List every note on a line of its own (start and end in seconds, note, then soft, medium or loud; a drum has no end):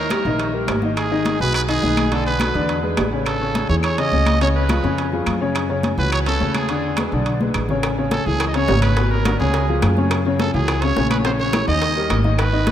0.00 0.20 D#2 medium
0.00 0.50 A#4 medium
0.10 0.23 G3 medium
0.10 0.23 G4 medium
0.10 0.23 A#4 medium
0.10 high conga medium
0.10 high timbale medium
0.10 claves medium
0.25 0.65 A#1 medium
0.25 0.49 D#3 medium
0.25 0.49 D#4 medium
0.25 0.49 D#5 medium
0.39 high conga soft
0.39 high timbale medium
0.53 0.77 G3 medium
0.53 0.77 G4 medium
0.53 0.77 A#4 medium
0.53 high conga soft
0.68 1.34 G#1 medium
0.68 high conga medium
0.68 high timbale medium
0.68 low timbale medium
0.68 claves medium
0.82 1.06 D#3 medium
0.82 1.06 D#4 medium
0.82 1.06 D#5 medium
0.82 high conga medium
0.97 1.37 G#4 medium
0.97 high timbale medium
0.97 claves medium
1.11 1.35 D#3 medium
1.11 1.35 D#4 medium
1.11 1.35 D#5 medium
1.11 high conga soft
1.25 high conga medium
1.25 high timbale medium
1.40 1.80 B1 medium
1.40 1.63 F#3 medium
1.40 1.63 F#4 medium
1.40 1.64 G#4 medium
1.40 1.54 B4 loud
1.40 high conga soft
1.54 1.61 B4 loud
1.54 high conga soft
1.54 high timbale medium
1.54 claves medium
1.68 1.80 D#3 medium
1.68 1.80 D#4 medium
1.68 2.14 G#4 loud
1.68 1.80 D#5 medium
1.68 high conga soft
1.68 high timbale medium
1.82 2.49 B1 medium
1.82 2.06 D#3 medium
1.82 2.06 D#4 medium
1.82 2.07 D#5 medium
1.82 high conga medium
1.97 high conga medium
1.97 high timbale medium
1.97 claves medium
2.12 2.35 D3 medium
2.12 2.35 D4 medium
2.12 2.26 A4 medium
2.12 2.35 D5 medium
2.12 high timbale medium
2.26 2.79 B4 medium
2.26 high conga soft
2.40 2.52 F#3 medium
2.40 2.52 F#4 medium
2.40 2.53 A4 medium
2.40 high conga medium
2.40 high timbale medium
2.40 claves medium
2.55 2.94 E2 loud
2.55 2.78 D3 medium
2.55 2.78 D4 medium
2.55 2.79 D5 medium
2.69 high timbale medium
2.83 3.07 G#3 medium
2.83 3.07 G#4 medium
2.83 3.07 B4 medium
2.83 high conga soft
2.97 3.64 A1 medium
2.97 high conga medium
2.97 high timbale medium
2.97 low timbale medium
2.97 claves medium
3.13 3.36 C#3 medium
3.13 3.36 C#4 medium
3.13 3.36 C#5 medium
3.26 3.66 A4 medium
3.26 high conga soft
3.26 high timbale medium
3.26 claves medium
3.41 3.64 C#3 medium
3.41 3.64 C#4 medium
3.41 3.64 C#5 medium
3.41 high conga soft
3.55 high conga medium
3.55 high timbale medium
3.69 4.09 E2 loud
3.69 3.93 E3 medium
3.69 3.93 E4 medium
3.69 3.93 G#4 medium
3.69 3.75 C#5 medium
3.69 high conga soft
3.83 4.00 C#5 loud
3.83 high timbale medium
3.83 claves medium
3.98 4.10 C#3 medium
3.98 4.10 C#4 medium
3.98 4.10 C#5 medium
3.98 4.41 D#5 loud
3.98 high conga soft
3.98 high timbale medium
4.12 4.78 C#2 medium
4.12 4.36 C#3 medium
4.12 4.36 C#4 medium
4.12 4.36 C#5 medium
4.12 high conga medium
4.26 high conga medium
4.26 high timbale medium
4.26 claves medium
4.41 4.64 C#3 medium
4.41 4.64 C#4 medium
4.41 4.65 C#5 medium
4.41 4.48 C#5 medium
4.41 high timbale medium
4.55 5.08 B4 medium
4.55 high conga soft
4.69 4.81 F3 medium
4.69 4.81 F4 medium
4.69 4.81 G#4 medium
4.69 high conga medium
4.69 high timbale medium
4.69 claves medium
4.83 5.23 F2 loud
4.83 5.07 C#3 medium
4.83 5.07 C#4 medium
4.83 5.07 C#5 medium
4.98 high conga soft
4.98 high timbale medium
5.12 5.36 F3 medium
5.12 5.36 F4 medium
5.12 5.36 G#4 medium
5.12 high conga soft
5.26 5.92 F#2 medium
5.26 high conga medium
5.26 high timbale medium
5.26 claves medium
5.41 5.64 C#3 medium
5.41 5.64 C#4 medium
5.41 5.65 C#5 medium
5.55 high timbale loud
5.55 claves medium
5.69 5.93 C#3 medium
5.69 5.93 C#4 medium
5.69 5.93 C#5 medium
5.69 high conga soft
5.83 high conga loud
5.83 high timbale medium
5.98 6.37 C#2 loud
5.98 6.21 E3 medium
5.98 6.21 E4 medium
5.98 6.22 F#4 medium
5.98 6.11 B4 loud
5.98 high conga soft
6.12 6.19 C#5 loud
6.12 high conga soft
6.12 high timbale medium
6.12 claves medium
6.26 6.38 C#3 medium
6.26 6.38 C#4 medium
6.26 6.53 A4 loud
6.26 6.38 C#5 medium
6.26 high conga soft
6.26 high timbale medium
6.40 7.06 E2 medium
6.40 6.64 C#3 medium
6.40 6.64 C#4 medium
6.40 6.64 C#5 medium
6.40 high conga medium
6.54 7.08 G#4 medium
6.54 high conga medium
6.54 high timbale medium
6.54 claves medium
6.69 6.93 D3 medium
6.69 6.93 D4 medium
6.69 6.93 D5 medium
6.69 high timbale medium
6.83 high conga soft
6.97 7.10 G#3 medium
6.97 7.10 G#4 medium
6.97 7.10 B4 medium
6.97 high conga medium
6.97 high timbale medium
6.97 claves medium
7.12 7.52 B1 medium
7.12 7.36 D3 medium
7.12 7.36 D4 medium
7.12 7.36 D5 medium
7.26 high conga soft
7.26 high timbale medium
7.40 7.64 G#3 medium
7.40 7.64 G#4 medium
7.40 7.65 B4 medium
7.40 high conga medium
7.54 8.21 A1 medium
7.54 low conga medium
7.54 high timbale medium
7.54 claves medium
7.69 7.93 C#3 medium
7.69 7.93 C#4 medium
7.69 7.93 C#5 medium
7.69 low conga medium
7.83 high bongo medium
7.83 high conga soft
7.83 high timbale medium
7.83 claves medium
7.97 8.21 C#3 medium
7.97 8.21 C#4 medium
7.97 8.21 C#5 medium
7.97 high conga soft
8.11 8.28 A4 loud
8.11 high bongo medium
8.11 high conga medium
8.11 high timbale medium
8.26 8.66 C#2 medium
8.26 8.50 E3 medium
8.26 8.50 E4 medium
8.26 8.47 G#4 loud
8.26 8.50 G#4 medium
8.26 high conga soft
8.40 high bongo medium
8.40 high conga soft
8.40 high timbale medium
8.40 claves medium
8.48 8.56 D#5 medium
8.54 8.66 C#3 medium
8.54 8.67 C#4 medium
8.54 8.82 C#5 loud
8.54 8.67 C#5 medium
8.54 high conga soft
8.54 high timbale medium
8.68 9.35 G#1 medium
8.68 8.93 C#3 medium
8.68 8.93 C#4 medium
8.68 8.93 C#5 medium
8.68 high bongo medium
8.68 low bongo medium
8.68 high conga medium
8.68 low timbale medium
8.82 9.12 B4 medium
8.82 high conga medium
8.82 high timbale medium
8.82 claves medium
8.97 9.21 B2 medium
8.97 9.21 B3 medium
8.97 9.21 B4 medium
8.97 high bongo medium
8.97 high timbale medium
9.11 9.39 A#4 medium
9.11 high bongo soft
9.11 high conga soft
9.25 9.37 D3 medium
9.25 9.38 D4 medium
9.25 9.38 F#4 medium
9.25 high bongo medium
9.25 high conga medium
9.25 high timbale medium
9.25 claves medium
9.40 9.80 C#2 medium
9.40 9.63 C#3 medium
9.40 9.63 C#4 medium
9.40 9.79 G#4 medium
9.40 9.64 C#5 medium
9.40 high bongo soft
9.54 high bongo medium
9.54 high conga soft
9.54 high timbale medium
9.68 9.92 F3 medium
9.68 9.92 F4 medium
9.68 9.92 G#4 medium
9.68 high bongo soft
9.68 high conga soft
9.82 10.48 F#2 medium
9.82 high bongo medium
9.82 low bongo medium
9.82 high conga medium
9.82 high timbale medium
9.82 claves medium
9.97 10.20 C#3 medium
9.97 10.21 C#4 medium
9.97 10.21 C#5 medium
9.97 high conga medium
10.11 high bongo medium
10.11 high timbale loud
10.11 claves medium
10.25 10.49 C#3 medium
10.25 10.49 C#4 medium
10.25 10.49 C#5 medium
10.25 high conga soft
10.39 10.53 A4 medium
10.39 high bongo medium
10.39 high conga medium
10.39 high timbale medium
10.54 10.94 C#2 medium
10.54 10.78 E3 medium
10.54 10.78 E4 medium
10.54 10.78 F#4 medium
10.54 10.84 G#4 medium
10.54 high conga soft
10.68 high bongo medium
10.68 high conga soft
10.68 high timbale medium
10.68 claves medium
10.82 10.94 C#3 medium
10.82 10.94 C#4 medium
10.82 11.10 C#5 loud
10.82 10.95 C#5 medium
10.82 high conga soft
10.82 high timbale medium
10.96 11.62 A#1 medium
10.96 11.20 C#3 medium
10.96 11.21 C#4 medium
10.96 11.21 C#5 medium
10.96 high bongo medium
10.96 low bongo medium
10.96 high conga medium
11.10 11.17 B4 medium
11.10 high conga medium
11.10 high timbale medium
11.10 claves medium
11.25 11.48 C#3 medium
11.25 11.49 C#4 medium
11.25 11.31 C5 medium
11.25 11.49 C#5 medium
11.25 high bongo medium
11.25 high timbale medium
11.39 11.66 C#5 medium
11.39 high bongo soft
11.39 high conga soft
11.53 11.65 E3 medium
11.53 11.65 E4 medium
11.53 11.66 G#4 medium
11.53 high bongo medium
11.53 high conga loud
11.53 high timbale medium
11.53 claves medium
11.68 12.07 D#2 loud
11.68 11.91 D#3 medium
11.68 11.91 D#4 medium
11.68 12.21 D#5 loud
11.68 11.91 D#5 medium
11.68 high bongo soft
11.82 high bongo medium
11.82 high timbale medium
11.96 12.20 G3 medium
11.96 12.20 G4 medium
11.96 12.20 A#4 medium
11.96 high bongo soft
11.96 high conga soft
12.10 12.71 G#1 medium
12.10 high bongo medium
12.10 low bongo medium
12.10 high conga medium
12.10 high timbale medium
12.10 claves medium
12.24 12.48 D#3 medium
12.24 12.48 D#4 medium
12.24 12.48 D#5 medium
12.24 high conga medium
12.38 12.71 B4 loud
12.38 high bongo medium
12.38 high timbale medium
12.38 claves medium
12.52 12.71 D#3 medium
12.52 12.71 D#4 medium
12.52 12.71 D#5 medium
12.52 high conga soft
12.67 high bongo medium
12.67 high conga medium
12.67 high timbale medium